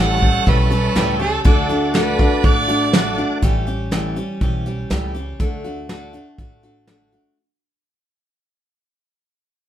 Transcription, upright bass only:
Already playing: A1
0.47 B1
0.96 C#2
1.45 D2
2.44 A1
3.42 A1
4.41 B1
4.91 C#2
5.40 D2
6.38 A1

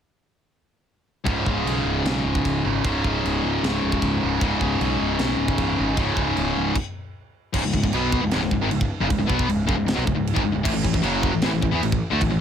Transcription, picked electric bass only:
1.26 C#1
1.46 C#1
1.65 B1
1.84 C#1
2.05 B1
2.25 C#1
2.46 C#1
2.65 G#1
2.85 C#1
3.05 C#1
3.25 C#1
3.44 C#1
3.63 C#1
3.84 C#1
4.02 C#1
4.24 C#1
4.42 C#1
4.61 C#1
4.81 B1
5.01 C#1
5.20 B1
5.39 C#1
5.58 C#1
5.80 G#1
5.98 C#1
6.17 C#1
6.38 C#1
6.57 C#1
7.54 C#1
7.63 C#1
7.74 C#1
7.83 C#1
7.93 B1
8.22 C#1
8.33 C#1
8.42 C#1
8.52 C#1
8.61 G#1
8.72 C#1
9.01 F#1
9.11 C#1
9.21 C#1
9.29 B1
9.49 C#1
9.68 F#1
9.78 C#1
9.90 C#1
9.98 B1
10.08 C#1
10.18 C#1
10.36 G#1
10.47 C#1
10.55 C#1
10.65 A1
10.74 A1
10.85 A1
10.94 A1
11.03 F#1
11.34 A1
11.44 A1
11.55 A1
11.63 A1
11.73 E2
11.83 A1
12.12 D2
12.22 A1
12.31 A1

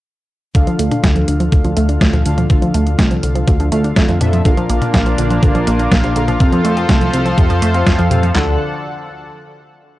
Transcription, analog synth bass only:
0.55 D2
0.79 D2
1.04 D2
1.28 D2
1.52 D2
1.65 D2
1.77 D2
2.01 D2
2.13 D2
2.26 D2
2.50 D2
2.74 D2
2.99 C2
3.23 C2
3.48 D2
3.60 D2
3.72 D2
3.96 F2
4.09 F2
4.21 F2
4.45 A#1
4.70 A#1
4.94 A#1
5.18 A#1
5.43 A#1
5.55 A#1
5.67 A#1
5.91 A#1
6.04 A#1
6.16 A#1
6.40 F2
6.65 F2
6.89 C2
7.13 C2
7.38 F2
7.50 F2
7.62 F2
7.87 F2
7.99 F2
8.11 F2
8.35 D2

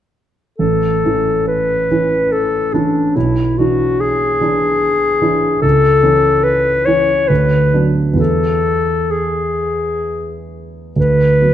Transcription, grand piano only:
0.59 A1
1.05 E3 C#4 E4
1.91 E3 C#4 E4
2.74 E3 C#4 E4
3.16 B1
3.59 E3 D4 E4
4.41 E3 D4 E4
5.21 E3 D4 E4
5.62 C#2
6.03 E3 C#4 E4
6.87 E3 C#4 E4
7.30 D2
7.73 F#3 B3 D4
8.13 E2 E3 B3
10.96 D2
11.41 F#3 B3

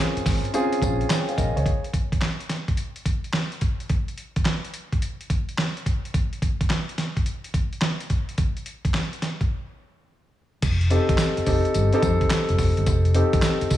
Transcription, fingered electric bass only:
0.16 muted fingered electric bass stroke
0.26 G#1
0.82 A#1
1.38 A#1
1.56 C#2
10.62 F1
11.38 muted fingered electric bass stroke
11.47 F1
11.75 G1
12.03 F2
12.50 F1
12.59 F1
12.78 G1
12.87 F1
13.62 muted fingered electric bass stroke
13.71 F1

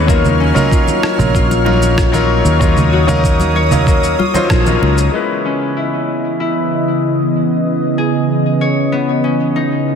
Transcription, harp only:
Already playing: B3 C#4 D#4 G#4 C#5
0.09 A#3
0.40 C#4
0.72 F4
1.35 F4
2.93 F#4
3.56 C#5
3.87 A#3
4.19 F4
4.50 A#3
5.14 B3
5.45 C#4
5.77 E4
6.40 E4
7.98 G#4
8.61 C#5
8.92 B3
9.24 C#4
9.56 D#4

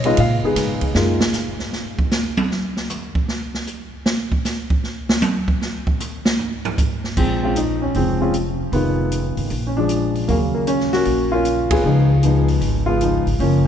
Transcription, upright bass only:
Already playing: B2
0.18 A#2
0.43 muted upright bass stroke
0.56 G#2
0.82 muted upright bass stroke
0.95 F#2
7.17 A#1
7.95 F1
8.72 F1
9.37 G#1
9.51 A#1
10.28 D#2
11.06 A#1
11.84 C#2
12.61 G#1
13.26 G#1
13.39 F#1

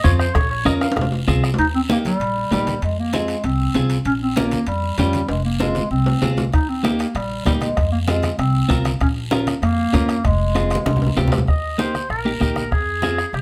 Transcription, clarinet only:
1.59 D#4
1.75 C4
1.92 A#3
2.06 G3
2.52 G3
2.84 G#3
2.99 A#3
3.14 G#3
3.45 C4
4.06 C#4
4.22 C4
4.37 A#3
4.68 G3
4.99 G3
5.29 G#3
5.45 A#3
5.61 G#3
5.91 C4
6.53 D#4
6.69 C4
6.84 A#3
7.15 G3
7.46 G3
7.61 G#3
7.92 A#3
8.07 G#3
8.38 C4
9.01 C#4
9.62 A#3
10.25 G#3

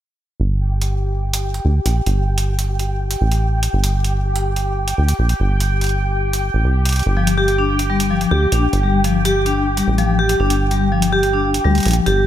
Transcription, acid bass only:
0.40 G1
1.65 D2
1.86 A#1
2.06 G1
3.21 A1
3.73 G1
4.98 D2
5.19 A#1
5.40 G1
6.54 A1
6.65 C2
7.06 G1
8.31 D2
8.52 A#1
8.73 G1
9.88 A1
10.40 G1
11.65 D2
11.86 A#1
12.06 G1

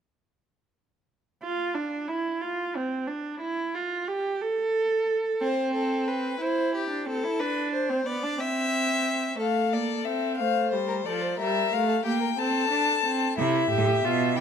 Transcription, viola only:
1.43 F4
1.75 D4
2.08 E4
2.42 F4
2.76 C4
3.07 D4
3.41 E4
3.75 F4
4.08 G4
4.42 A4
5.41 C4
6.41 E4
6.90 D4
7.06 C4
7.24 E4
7.40 D4
7.90 C4
8.07 B3
8.23 D4
8.39 C4
9.39 A3
9.73 A#3
10.07 C4
10.40 A3
10.73 G3
11.07 F3
11.41 G3
11.74 A3
12.06 A#3
12.39 C4
12.71 D4
13.06 C4
13.39 E4
13.71 G4
14.05 F4
14.36 E4

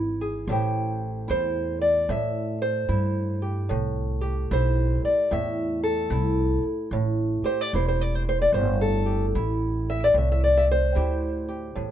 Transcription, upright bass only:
Already playing: G#1
0.47 A1
1.30 E2
2.09 A2
2.89 G2
3.70 C2
4.51 B1
5.03 muted upright bass stroke
5.31 E2
6.10 C2
6.63 muted upright bass stroke
6.91 A1
7.42 muted upright bass stroke
7.73 E1
8.52 G1
9.35 A1
10.14 C2
10.96 D2
11.76 E2

